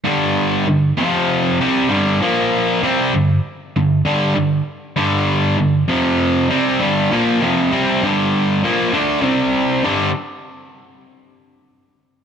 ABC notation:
X:1
M:4/4
L:1/8
Q:1/4=98
K:Gm
V:1 name="Overdriven electric guitar" clef=bass
[G,,D,G,]2 [G,,D,] [F,,C,F,]2 [C,G,C] [G,,D,G,] [B,,F,B,]- | [B,,F,B,] [C,G,C] [G,,D,] z [G,,D,] [G,,D,G,] [G,,D,] z | [G,,D,G,]2 [G,,D,] [F,,C,F,]2 [C,G,C] [G,,D,G,] [B,,F,B,] | [F,,C,F,] [C,G,C] [G,,D,G,]2 [B,,F,B,] [D,A,D] [C,G,C]2 |
[G,,D,G,] z6 z |]